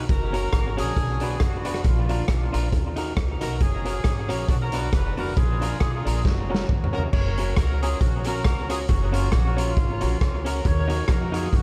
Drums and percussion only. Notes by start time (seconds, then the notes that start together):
0.09 kick, closed hi-hat
0.34 closed hi-hat
0.53 kick, cross-stick, closed hi-hat
0.78 closed hi-hat
0.97 kick, closed hi-hat
1.20 closed hi-hat
1.40 kick, cross-stick, closed hi-hat
1.65 closed hi-hat
1.74 cross-stick
1.84 kick, closed hi-hat
2.09 closed hi-hat
2.28 kick, cross-stick, closed hi-hat
2.54 closed hi-hat
2.72 kick, closed hi-hat
2.96 closed hi-hat
3.17 kick, cross-stick, closed hi-hat
3.41 closed hi-hat
3.60 kick, closed hi-hat
3.85 closed hi-hat
4.04 kick, cross-stick, closed hi-hat
4.29 cross-stick, closed hi-hat
4.49 kick, closed hi-hat
4.72 closed hi-hat
4.93 kick, cross-stick, closed hi-hat
5.17 open hi-hat
5.37 kick, closed hi-hat
5.62 closed hi-hat
5.80 kick, cross-stick, closed hi-hat
6.07 closed hi-hat
6.25 kick, snare
6.55 snare
6.69 kick, mid tom
6.84 floor tom
6.98 floor tom
7.13 kick, crash
7.38 closed hi-hat
7.56 kick, cross-stick, closed hi-hat
7.83 closed hi-hat
8.01 kick, closed hi-hat
8.24 closed hi-hat
8.44 kick, cross-stick, closed hi-hat
8.70 closed hi-hat
8.88 kick, closed hi-hat
9.14 closed hi-hat
9.32 kick, cross-stick, closed hi-hat
9.58 closed hi-hat
9.77 kick, closed hi-hat
10.01 closed hi-hat
10.21 kick, cross-stick, closed hi-hat
10.46 closed hi-hat
10.65 kick, closed hi-hat
10.90 closed hi-hat
11.08 kick, cross-stick, closed hi-hat
11.34 closed hi-hat
11.53 kick, closed hi-hat